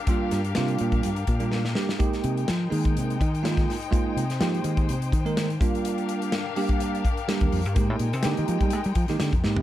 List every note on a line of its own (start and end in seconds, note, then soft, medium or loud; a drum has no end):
0.00 1.95 D4 medium
0.00 1.96 G4 medium
0.00 3.88 A#4 medium
0.00 1.96 F5 medium
0.07 0.39 G3 medium
0.07 0.39 A#3 medium
0.07 0.40 D4 medium
0.07 0.39 F4 loud
0.07 kick loud
0.07 closed hi-hat medium
0.31 0.55 G2 medium
0.31 snare soft
0.31 closed hi-hat medium
0.44 closed hi-hat soft
0.55 0.80 C3 medium
0.55 1.09 G3 medium
0.55 1.10 A#3 medium
0.55 1.10 D4 medium
0.55 1.10 F4 medium
0.55 snare loud
0.55 closed hi-hat medium
0.68 closed hi-hat soft
0.78 1.03 A#2 medium
0.78 closed hi-hat medium
0.92 kick medium
0.92 closed hi-hat soft
1.03 1.28 G2 medium
1.03 closed hi-hat medium
1.16 closed hi-hat soft
1.27 1.73 A#2 medium
1.27 kick medium
1.27 closed hi-hat medium
1.40 1.63 G3 medium
1.40 1.63 A#3 medium
1.40 1.63 D4 medium
1.40 1.64 F4 medium
1.40 closed hi-hat soft
1.52 snare medium
1.65 snare medium
1.75 1.91 G3 medium
1.75 1.91 A#3 medium
1.75 1.92 D4 medium
1.75 1.92 G4 medium
1.75 snare medium
1.89 snare medium
1.98 5.56 G#3 medium
1.98 2.45 G#3 medium
1.98 2.45 A#3 medium
1.98 5.56 D#4 medium
1.98 2.45 D#4 medium
1.98 2.46 G4 medium
1.98 5.56 G5 medium
1.98 kick loud
1.98 closed hi-hat medium
2.13 snare soft
2.13 closed hi-hat soft
2.24 2.47 C3 medium
2.24 closed hi-hat medium
2.37 closed hi-hat soft
2.48 2.71 F3 medium
2.48 snare loud
2.48 closed hi-hat medium
2.70 2.95 D#3 medium
2.70 3.17 G#3 medium
2.70 3.17 A#3 medium
2.70 3.17 D#4 medium
2.70 3.17 G#4 medium
2.70 open hi-hat medium
2.85 kick medium
2.85 closed hi-hat soft
2.97 3.20 C3 medium
2.97 closed hi-hat medium
3.10 closed hi-hat soft
3.21 3.65 D#3 loud
3.21 kick medium
3.21 closed hi-hat medium
3.35 closed hi-hat soft
3.43 3.74 G#3 medium
3.43 3.74 A#3 medium
3.43 3.74 D#4 medium
3.43 3.75 F4 medium
3.43 snare loud
3.43 closed hi-hat medium
3.57 kick medium
3.57 snare soft
3.57 closed hi-hat soft
3.70 snare soft
3.70 open hi-hat medium
3.82 closed hi-hat soft
3.91 4.22 G#3 medium
3.91 4.23 A#3 medium
3.91 4.23 D#4 medium
3.91 4.23 F4 loud
3.91 5.58 C5 medium
3.91 kick loud
3.91 closed hi-hat medium
4.16 4.39 C3 soft
4.16 closed hi-hat medium
4.30 snare soft
4.30 closed hi-hat soft
4.40 4.64 F3 medium
4.40 4.94 G#3 medium
4.40 4.94 A#3 medium
4.40 4.94 D#4 medium
4.40 4.95 G4 medium
4.40 snare loud
4.40 closed hi-hat medium
4.54 closed hi-hat soft
4.64 4.87 D#3 medium
4.64 closed hi-hat medium
4.77 kick medium
4.77 closed hi-hat soft
4.89 5.12 C3 medium
4.89 closed hi-hat medium
5.02 closed hi-hat soft
5.12 5.57 D#3 medium
5.12 kick medium
5.12 closed hi-hat medium
5.25 5.48 G#3 medium
5.25 5.48 A#3 medium
5.25 5.48 D#4 medium
5.25 5.48 A#4 medium
5.25 closed hi-hat soft
5.37 snare loud
5.37 closed hi-hat medium
5.50 closed hi-hat soft
5.59 6.37 G3 medium
5.59 6.38 A#3 medium
5.59 7.74 D4 medium
5.59 6.38 D4 medium
5.59 6.38 F4 medium
5.59 7.74 G4 medium
5.59 9.62 A#4 medium
5.59 7.73 F5 medium
5.59 kick loud
5.59 closed hi-hat medium
5.75 closed hi-hat soft
5.85 closed hi-hat medium
5.98 closed hi-hat soft
6.09 closed hi-hat medium
6.22 closed hi-hat soft
6.32 snare loud
6.32 closed hi-hat medium
6.56 7.02 G3 medium
6.56 7.02 A#3 medium
6.56 7.03 D4 medium
6.56 7.03 G4 loud
6.56 open hi-hat medium
6.69 kick medium
6.69 closed hi-hat soft
6.80 closed hi-hat medium
6.95 closed hi-hat soft
7.05 kick medium
7.05 closed hi-hat medium
7.17 closed hi-hat soft
7.28 7.59 G3 medium
7.28 7.59 A#3 medium
7.28 7.59 D4 medium
7.28 7.59 G4 medium
7.28 snare loud
7.28 closed hi-hat medium
7.41 7.52 D#2 medium
7.41 kick medium
7.41 closed hi-hat soft
7.52 7.66 F2 medium
7.52 open hi-hat medium
7.65 7.76 G2 medium
7.65 closed hi-hat soft
7.75 7.90 G#2 medium
7.75 8.07 G#3 medium
7.75 9.62 G#3 medium
7.75 8.07 A#3 medium
7.75 8.07 D#4 medium
7.75 9.62 D#4 medium
7.75 8.07 G4 medium
7.75 9.62 G5 medium
7.75 kick loud
7.75 closed hi-hat medium
7.90 7.99 A2 medium
7.99 8.13 A#2 medium
7.99 closed hi-hat medium
8.13 8.24 C3 medium
8.13 closed hi-hat soft
8.23 8.37 D3 medium
8.23 8.78 G#3 medium
8.23 8.78 A#3 medium
8.23 8.78 D#4 medium
8.23 8.78 G4 medium
8.23 snare loud
8.23 closed hi-hat medium
8.37 8.48 D#3 medium
8.37 closed hi-hat soft
8.48 8.61 F3 medium
8.48 closed hi-hat medium
8.61 8.73 G3 medium
8.61 kick medium
8.61 closed hi-hat soft
8.70 8.85 G#3 medium
8.70 closed hi-hat medium
8.84 8.96 G3 medium
8.84 closed hi-hat soft
8.95 9.09 F3 medium
8.95 kick medium
8.95 closed hi-hat medium
9.08 9.20 D#3 medium
9.08 9.32 G#3 medium
9.08 9.32 A#3 medium
9.08 9.32 D#4 medium
9.08 9.32 G4 medium
9.08 snare soft
9.08 closed hi-hat soft
9.20 9.33 D3 medium
9.20 snare loud
9.20 closed hi-hat medium
9.33 9.43 F2 medium
9.33 kick medium
9.33 closed hi-hat soft
9.44 9.57 G#2 medium
9.44 9.60 G#3 medium
9.44 9.60 A#3 medium
9.44 9.60 D#4 medium
9.44 9.60 G4 medium
9.44 snare medium
9.56 9.62 C3 medium
9.56 floor tom medium